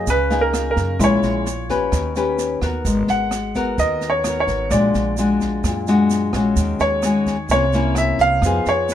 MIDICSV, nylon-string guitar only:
0, 0, Header, 1, 2, 480
1, 0, Start_track
1, 0, Key_signature, -6, "minor"
1, 0, Tempo, 464037
1, 1038, Time_signature, 4, 2, 24, 8
1, 9248, End_track
2, 0, Start_track
2, 0, Title_t, "Nylon-string guitar"
2, 0, Program_c, 0, 24
2, 77, Note_on_c, 0, 49, 49
2, 314, Note_on_c, 0, 58, 66
2, 318, Note_on_c, 0, 63, 64
2, 323, Note_on_c, 0, 68, 65
2, 997, Note_off_c, 0, 58, 0
2, 999, Note_off_c, 0, 63, 0
2, 1001, Note_off_c, 0, 68, 0
2, 1013, Note_off_c, 0, 49, 0
2, 1035, Note_on_c, 0, 46, 54
2, 1035, Note_on_c, 0, 56, 52
2, 1038, Note_on_c, 0, 61, 51
2, 1040, Note_on_c, 0, 64, 59
2, 1512, Note_off_c, 0, 56, 0
2, 1513, Note_off_c, 0, 61, 0
2, 1515, Note_off_c, 0, 64, 0
2, 1752, Note_on_c, 0, 61, 56
2, 1755, Note_on_c, 0, 67, 52
2, 1761, Note_on_c, 0, 71, 60
2, 1972, Note_off_c, 0, 46, 0
2, 1988, Note_on_c, 0, 51, 51
2, 2196, Note_off_c, 0, 61, 0
2, 2197, Note_off_c, 0, 67, 0
2, 2200, Note_off_c, 0, 71, 0
2, 2239, Note_on_c, 0, 61, 56
2, 2241, Note_on_c, 0, 67, 56
2, 2245, Note_on_c, 0, 71, 58
2, 2679, Note_off_c, 0, 67, 0
2, 2680, Note_off_c, 0, 61, 0
2, 2682, Note_off_c, 0, 71, 0
2, 2714, Note_on_c, 0, 59, 51
2, 2721, Note_on_c, 0, 66, 50
2, 2726, Note_on_c, 0, 70, 50
2, 2928, Note_off_c, 0, 51, 0
2, 2961, Note_on_c, 0, 56, 53
2, 3396, Note_off_c, 0, 59, 0
2, 3401, Note_off_c, 0, 66, 0
2, 3402, Note_off_c, 0, 70, 0
2, 3675, Note_on_c, 0, 59, 51
2, 3678, Note_on_c, 0, 66, 59
2, 3683, Note_on_c, 0, 70, 65
2, 3895, Note_off_c, 0, 56, 0
2, 3918, Note_on_c, 0, 51, 49
2, 4358, Note_off_c, 0, 59, 0
2, 4358, Note_off_c, 0, 66, 0
2, 4361, Note_off_c, 0, 70, 0
2, 4412, Note_on_c, 0, 59, 49
2, 4416, Note_on_c, 0, 66, 48
2, 4421, Note_on_c, 0, 70, 52
2, 4853, Note_off_c, 0, 51, 0
2, 4866, Note_off_c, 0, 59, 0
2, 4866, Note_off_c, 0, 66, 0
2, 4867, Note_off_c, 0, 70, 0
2, 4882, Note_on_c, 0, 46, 51
2, 4882, Note_on_c, 0, 56, 53
2, 4889, Note_on_c, 0, 62, 45
2, 4895, Note_on_c, 0, 66, 58
2, 5320, Note_off_c, 0, 56, 0
2, 5321, Note_off_c, 0, 62, 0
2, 5327, Note_off_c, 0, 66, 0
2, 5363, Note_on_c, 0, 56, 48
2, 5368, Note_on_c, 0, 66, 50
2, 5372, Note_on_c, 0, 62, 50
2, 5816, Note_off_c, 0, 46, 0
2, 5844, Note_on_c, 0, 46, 53
2, 6041, Note_off_c, 0, 56, 0
2, 6044, Note_off_c, 0, 66, 0
2, 6046, Note_off_c, 0, 62, 0
2, 6085, Note_on_c, 0, 56, 65
2, 6090, Note_on_c, 0, 66, 66
2, 6092, Note_on_c, 0, 62, 57
2, 6523, Note_off_c, 0, 56, 0
2, 6524, Note_off_c, 0, 62, 0
2, 6525, Note_off_c, 0, 66, 0
2, 6571, Note_on_c, 0, 56, 54
2, 6575, Note_on_c, 0, 61, 56
2, 6578, Note_on_c, 0, 66, 63
2, 6777, Note_off_c, 0, 46, 0
2, 6812, Note_on_c, 0, 51, 51
2, 7275, Note_off_c, 0, 61, 0
2, 7276, Note_off_c, 0, 56, 0
2, 7280, Note_off_c, 0, 66, 0
2, 7287, Note_on_c, 0, 56, 54
2, 7291, Note_on_c, 0, 61, 47
2, 7292, Note_on_c, 0, 66, 48
2, 7605, Note_off_c, 0, 61, 0
2, 7606, Note_off_c, 0, 56, 0
2, 7607, Note_off_c, 0, 66, 0
2, 7741, Note_off_c, 0, 51, 0
2, 7776, Note_on_c, 0, 48, 47
2, 7778, Note_on_c, 0, 58, 53
2, 7782, Note_on_c, 0, 61, 52
2, 7784, Note_on_c, 0, 64, 56
2, 7909, Note_off_c, 0, 58, 0
2, 7910, Note_off_c, 0, 61, 0
2, 7912, Note_off_c, 0, 64, 0
2, 8008, Note_on_c, 0, 58, 62
2, 8011, Note_on_c, 0, 61, 66
2, 8017, Note_on_c, 0, 64, 59
2, 8685, Note_off_c, 0, 58, 0
2, 8686, Note_off_c, 0, 61, 0
2, 8689, Note_off_c, 0, 64, 0
2, 8704, Note_off_c, 0, 48, 0
2, 8739, Note_on_c, 0, 53, 49
2, 8741, Note_on_c, 0, 59, 51
2, 8743, Note_on_c, 0, 63, 53
2, 8751, Note_on_c, 0, 68, 59
2, 9248, Note_off_c, 0, 53, 0
2, 9248, Note_off_c, 0, 59, 0
2, 9248, Note_off_c, 0, 63, 0
2, 9248, Note_off_c, 0, 68, 0
2, 9248, End_track
0, 0, End_of_file